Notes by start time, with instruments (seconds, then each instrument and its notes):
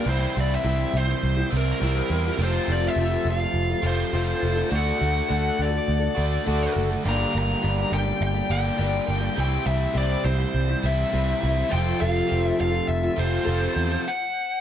0.04 picked electric bass C2, overdriven electric guitar C3 E3 G3 C4 E4, twelve-string acoustic guitar C3 G3 E4
0.08 twelve-string acoustic guitar C4 G4, lead electric guitar C5
0.35 picked electric bass C2, twelve-string acoustic guitar G3 C4 E4 G4
0.41 lead electric guitar D5
0.55 lead electric guitar E5
0.63 picked electric bass C2, twelve-string acoustic guitar C3 G3 C4 E4 G4
0.92 picked electric bass C2, twelve-string acoustic guitar G3 C4 E4 G4
0.98 lead electric guitar C5
1.07 twelve-string acoustic guitar C4 E4 G4
1.23 picked electric bass C2
1.37 twelve-string acoustic guitar C4 E4 G4
1.50 picked electric bass C2, overdriven electric guitar C3 E3 G3 C4 E4
1.57 lead electric guitar A#4
1.80 picked electric bass C2, overdriven electric guitar C3 E3 G3 C4 E4, twelve-string acoustic guitar C3 G3 C4 E4
1.84 twelve-string acoustic guitar G4
2.10 picked electric bass E2, twelve-string acoustic guitar G3 C4 E4 G4
2.28 twelve-string acoustic guitar C4 E4 G4
2.37 picked electric bass F1, overdriven electric guitar F2 C3 F3 A3 C4 F4, twelve-string acoustic guitar F3 C4 F4
2.41 twelve-string acoustic guitar A4, lead electric guitar C5
2.68 picked electric bass F1, twelve-string acoustic guitar F3 C4 F4 A4, lead electric guitar D5
2.88 lead electric guitar E5
2.96 picked electric bass F1, twelve-string acoustic guitar F3
3.00 twelve-string acoustic guitar C4 F4 A4
3.25 picked electric bass F1, twelve-string acoustic guitar F3 C4 F4
3.30 twelve-string acoustic guitar A4, lead electric guitar F5
3.42 twelve-string acoustic guitar C4 F4 A4
3.54 picked electric bass F1
3.70 twelve-string acoustic guitar C4 F4 A4
3.82 picked electric bass F1, overdriven electric guitar F2 C3 F3 A3 C4 F4
3.86 lead electric guitar C5
4.12 picked electric bass F1, overdriven electric guitar F2 C3 F3 A3 C4 F4, twelve-string acoustic guitar F3 C4 F4 A4
4.41 picked electric bass F1, twelve-string acoustic guitar F3 C4 F4 A4
4.55 twelve-string acoustic guitar C4 F4 A4
4.69 picked electric bass D2, twelve-string acoustic guitar D3 A3 D4 F#4 A4, overdriven electric guitar D3 A3 D4
4.73 overdriven electric guitar F#4, lead electric guitar F#5
4.96 twelve-string acoustic guitar A3 D4 F#4 A4
5.02 picked electric bass D2
5.28 picked electric bass D2, twelve-string acoustic guitar D3 A3 D4 F#4 A4
5.58 picked electric bass D2, twelve-string acoustic guitar A3 D4 F#4 A4
5.62 lead electric guitar D5
5.71 twelve-string acoustic guitar D4 F#4 A4
5.88 picked electric bass D2
5.99 twelve-string acoustic guitar D4 F#4 A4
6.15 picked electric bass D2, overdriven electric guitar D3 A3 D4 F#4
6.45 picked electric bass D2, overdriven electric guitar D3 A3 D4 F#4, twelve-string acoustic guitar D3 A3 D4 F#4 A4
6.74 picked electric bass F#1, twelve-string acoustic guitar A3 D4 F#4 A4
6.89 twelve-string acoustic guitar D4 F#4 A4
7.03 picked electric bass G1, overdriven electric guitar G2 D3 G3 A#3 D4 G4, twelve-string acoustic guitar G2 D3 G3 A#3 D4 G4
7.09 lead electric guitar A#5
7.33 picked electric bass G1, twelve-string acoustic guitar G3 A#3 D4 G4
7.38 lead electric guitar A#5
7.61 picked electric bass G1, twelve-string acoustic guitar G2 D3 G3 A#3 D4 G4
7.91 picked electric bass G1, twelve-string acoustic guitar G3 A#3 D4 G4, lead electric guitar G5
8.04 twelve-string acoustic guitar G3 A#3 D4 G4
8.21 picked electric bass G1, lead electric guitar G5
8.33 twelve-string acoustic guitar G3 A#3 D4 G4
8.49 picked electric bass G1, overdriven electric guitar G2 D3 G3 A#3 D4 G4, lead electric guitar G5
8.76 picked electric bass G1, twelve-string acoustic guitar G2 D3 G3 A#3 D4 G4, overdriven electric guitar G2 D3 G3 A#3
8.81 overdriven electric guitar D4 G4
9.04 twelve-string acoustic guitar G3 A#3 D4 G4
9.08 picked electric bass G1
9.21 twelve-string acoustic guitar G3 A#3 D4 G4
9.34 picked electric bass C2, twelve-string acoustic guitar C3 G3 C4 E4 G4, overdriven electric guitar C3 E3 G3
9.39 overdriven electric guitar C4 E4, lead electric guitar G5
9.64 picked electric bass C2, twelve-string acoustic guitar G3 C4 E4 G4, lead electric guitar E5
9.92 picked electric bass C2, twelve-string acoustic guitar C3 G3 C4 E4 G4
9.97 lead electric guitar D5
10.23 picked electric bass C2, twelve-string acoustic guitar G3 C4 E4 G4, lead electric guitar C5
10.38 twelve-string acoustic guitar C4 E4 G4
10.55 picked electric bass C2
10.68 twelve-string acoustic guitar C4 E4 G4
10.82 picked electric bass C2, overdriven electric guitar C3 E3 G3 C4 E4, lead electric guitar E5
11.11 picked electric bass C2, twelve-string acoustic guitar C3 G3 C4 E4 G4, overdriven electric guitar C3 E3 G3 C4 E4
11.39 twelve-string acoustic guitar G3 C4 E4 G4
11.43 picked electric bass C2
11.55 twelve-string acoustic guitar C4 E4 G4
11.68 overdriven electric guitar F2 C3 F3 A3, twelve-string acoustic guitar F3 C4 F4 A4, lead electric guitar G5
11.73 picked electric bass F1, overdriven electric guitar C4 F4
11.98 picked electric bass F1, twelve-string acoustic guitar F3 C4 F4 A4, lead electric guitar F5
12.28 twelve-string acoustic guitar F3 C4 F4 A4
12.32 picked electric bass F1
12.44 lead electric guitar E5
12.56 twelve-string acoustic guitar F3 C4 F4 A4
12.61 picked electric bass F1, lead electric guitar F5
12.71 twelve-string acoustic guitar C4 F4 A4
12.88 picked electric bass F1, lead electric guitar E5
13.01 twelve-string acoustic guitar C4 F4 A4
13.16 picked electric bass F1, overdriven electric guitar F2 C3 F3 A3 C4 F4, lead electric guitar C5
13.43 overdriven electric guitar F2 C3, twelve-string acoustic guitar F3 C4 F4 A4
13.47 picked electric bass F1, overdriven electric guitar F3 A3 C4 F4
13.73 picked electric bass E2, twelve-string acoustic guitar F3 C4 F4 A4
13.89 twelve-string acoustic guitar C4 F4 A4
14.08 lead electric guitar F#5